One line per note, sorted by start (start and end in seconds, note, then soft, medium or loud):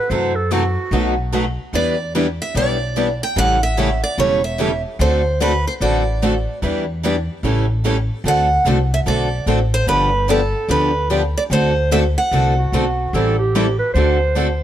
0.00 0.11 B4 loud
0.10 0.75 F#2 medium
0.10 0.31 C3 medium
0.10 0.32 E3 medium
0.10 0.31 F#3 medium
0.10 0.32 A3 medium
0.10 0.32 C4 medium
0.10 0.32 E4 medium
0.10 0.32 F#4 medium
0.10 0.32 A4 medium
0.10 0.37 C5 medium
0.35 0.54 A4 medium
0.51 0.62 C3 medium
0.51 0.62 E3 medium
0.51 0.62 F#3 medium
0.51 0.62 A3 medium
0.51 0.62 C4 medium
0.51 0.63 E4 medium
0.51 0.63 F#4 medium
0.51 1.33 F#4 medium
0.51 0.63 A4 medium
0.91 1.56 B1 medium
0.91 1.13 B2 medium
0.91 1.13 F#3 medium
0.91 1.13 A3 medium
0.91 1.13 D#4 medium
0.91 1.13 F#4 medium
0.91 1.14 B4 medium
1.32 1.44 B2 medium
1.32 1.44 F#3 medium
1.32 1.44 A3 medium
1.32 1.44 D#4 medium
1.32 1.44 F#4 medium
1.32 1.44 B4 medium
1.73 2.38 E2 medium
1.73 1.94 E3 medium
1.73 1.95 G3 medium
1.73 1.95 B3 medium
1.73 1.95 D4 medium
1.73 1.95 E4 medium
1.73 1.95 G4 medium
1.73 1.95 B4 medium
1.73 2.12 D5 medium
2.15 2.25 E3 medium
2.15 2.26 G3 medium
2.15 2.25 B3 medium
2.15 2.26 D4 medium
2.15 2.26 E4 medium
2.15 2.26 G4 medium
2.15 2.26 B4 medium
2.42 2.56 E5 medium
2.55 3.20 B1 medium
2.55 2.76 E3 medium
2.55 2.76 G3 medium
2.55 2.76 B3 medium
2.55 2.76 D4 medium
2.55 2.77 E4 medium
2.55 2.76 G4 medium
2.55 2.77 B4 medium
2.55 3.23 D5 medium
2.96 3.07 E3 medium
2.96 3.07 G3 medium
2.96 3.07 B3 medium
2.96 3.07 D4 medium
2.96 3.07 E4 medium
2.96 3.07 G4 medium
2.96 3.07 B4 medium
3.23 3.38 G5 medium
3.36 4.01 A1 medium
3.36 3.57 C#3 medium
3.36 3.57 E3 medium
3.36 3.57 G3 medium
3.36 3.58 A3 medium
3.36 3.57 C#4 medium
3.36 3.57 E4 medium
3.36 3.58 G4 medium
3.36 3.57 A4 medium
3.36 3.61 F#5 loud
3.63 4.03 E5 medium
3.77 3.88 C#3 loud
3.77 3.88 E3 medium
3.77 3.88 G3 medium
3.77 3.89 A3 loud
3.77 3.88 C#4 medium
3.77 3.89 E4 medium
3.77 3.89 G4 loud
3.77 3.89 A4 loud
4.04 4.19 D5 medium
4.18 4.83 E1 medium
4.18 4.39 C#3 medium
4.18 4.39 E3 medium
4.18 4.39 G3 medium
4.18 4.39 A3 medium
4.18 4.39 C#4 medium
4.18 4.40 E4 medium
4.18 4.39 G4 medium
4.18 4.40 A4 medium
4.18 4.44 C#5 medium
4.44 4.81 E5 medium
4.58 4.69 C#3 medium
4.58 4.70 E3 medium
4.58 4.70 G3 medium
4.58 4.70 A3 medium
4.58 4.70 C#4 loud
4.58 4.71 E4 medium
4.58 4.70 G4 loud
4.58 4.70 A4 medium
4.99 5.64 D2 medium
4.99 5.21 D3 medium
4.99 5.21 A3 medium
4.99 5.21 C4 medium
4.99 5.21 F#4 medium
4.99 5.21 A4 medium
4.99 5.42 C5 medium
5.41 5.51 D3 medium
5.41 5.51 A3 medium
5.41 5.52 C4 medium
5.41 5.52 F#4 medium
5.41 5.52 A4 loud
5.41 5.67 B4 medium
5.67 5.72 C5 medium
5.80 6.45 A1 medium
5.80 6.02 D3 medium
5.80 6.02 A3 medium
5.80 6.02 C4 medium
5.80 6.02 F#4 medium
5.80 6.03 A4 medium
5.80 6.58 D5 medium
6.22 6.33 D3 medium
6.22 6.33 A3 medium
6.22 6.33 C4 medium
6.22 6.33 F#4 medium
6.22 6.33 A4 loud
6.62 7.27 E2 medium
6.62 6.83 E3 medium
6.62 6.83 G3 medium
6.62 6.84 B3 medium
6.62 6.83 D4 medium
6.62 6.83 E4 medium
6.62 6.84 G4 medium
6.62 6.83 B4 medium
7.03 7.14 E3 medium
7.03 7.14 G3 medium
7.03 7.15 B3 loud
7.03 7.14 D4 loud
7.03 7.15 E4 medium
7.03 7.15 G4 loud
7.03 7.15 B4 medium
7.43 8.08 A1 medium
7.43 7.65 C#3 medium
7.43 7.64 E3 medium
7.43 7.65 G3 medium
7.43 7.65 A3 medium
7.43 7.65 C#4 medium
7.43 7.65 E4 medium
7.43 7.65 G4 medium
7.43 7.65 A4 medium
7.84 7.96 C#3 medium
7.84 7.95 E3 medium
7.84 7.95 G3 medium
7.84 7.96 A3 medium
7.84 7.95 C#4 loud
7.84 7.96 E4 medium
7.84 7.96 G4 loud
7.84 7.95 A4 medium
8.24 8.57 D2 medium
8.24 8.46 D3 medium
8.24 8.46 A3 medium
8.24 8.46 C4 medium
8.24 8.46 F#4 medium
8.24 8.46 A4 medium
8.28 8.64 F#5 loud
8.65 8.99 C2 medium
8.65 8.76 D3 medium
8.65 8.77 A3 medium
8.65 8.77 C4 medium
8.65 8.77 F#4 medium
8.65 8.77 A4 medium
8.94 8.99 E5 medium
9.06 9.40 B1 medium
9.06 9.27 D3 medium
9.06 9.27 A3 medium
9.06 9.27 C4 medium
9.06 9.27 F#4 medium
9.06 9.27 A4 medium
9.06 9.45 D5 medium
9.46 9.81 A1 medium
9.46 9.58 D3 medium
9.46 9.58 A3 medium
9.46 9.58 C4 medium
9.46 9.58 F#4 medium
9.46 9.58 A4 medium
9.74 9.88 C5 medium
9.87 10.52 G1 medium
9.87 10.08 D3 medium
9.87 10.09 F3 medium
9.87 10.09 B3 medium
9.87 10.09 D4 medium
9.87 10.09 G4 medium
9.87 10.30 B4 medium
10.29 10.39 D3 medium
10.29 10.40 F3 medium
10.29 10.40 B3 medium
10.29 10.40 D4 medium
10.29 10.40 G4 medium
10.29 10.67 A4 medium
10.68 11.34 D2 medium
10.68 10.90 D3 medium
10.68 10.90 F3 medium
10.68 10.90 B3 medium
10.68 10.91 D4 medium
10.68 10.91 G4 medium
10.68 11.08 B4 medium
11.11 11.21 D3 medium
11.11 11.21 F3 medium
11.11 11.21 B3 medium
11.11 11.21 D4 medium
11.11 11.21 G4 medium
11.37 11.42 D5 medium
11.50 12.15 D2 medium
11.50 11.72 D3 medium
11.50 11.72 A3 medium
11.50 11.72 C4 medium
11.50 11.72 F#4 medium
11.50 11.72 A4 medium
11.50 11.89 C5 medium
11.91 12.02 D3 medium
11.91 12.02 A3 medium
11.91 12.02 C4 loud
11.91 12.03 F#4 medium
11.91 12.03 A4 medium
11.91 11.99 E5 medium
12.18 12.94 F#5 medium
12.31 12.66 C2 medium
12.31 12.53 D3 medium
12.31 12.53 A3 medium
12.31 12.53 C4 medium
12.31 12.53 F#4 medium
12.31 12.53 A4 medium
12.58 13.16 F#4 medium
12.72 13.07 B1 medium
12.72 12.84 D3 medium
12.72 12.84 A3 medium
12.72 12.84 C4 loud
12.72 12.84 F#4 loud
12.72 12.84 A4 loud
13.13 13.78 A1 medium
13.13 13.35 E3 medium
13.13 13.35 G3 medium
13.13 13.35 C4 medium
13.13 13.35 E4 medium
13.13 13.38 A4 medium
13.13 13.35 A4 medium
13.39 13.76 G4 medium
13.55 13.65 E3 medium
13.55 13.65 G3 medium
13.55 13.66 C4 loud
13.55 13.66 E4 loud
13.55 13.66 A4 medium
13.79 13.93 B4 medium
13.94 14.59 D2 medium
13.94 14.16 D3 medium
13.94 14.16 A3 medium
13.94 14.17 C4 medium
13.94 14.17 F#4 medium
13.94 14.17 A4 medium
13.94 14.63 C5 loud
14.36 14.47 D3 medium
14.36 14.47 A3 medium
14.36 14.47 C4 medium
14.36 14.47 F#4 medium
14.36 14.47 A4 medium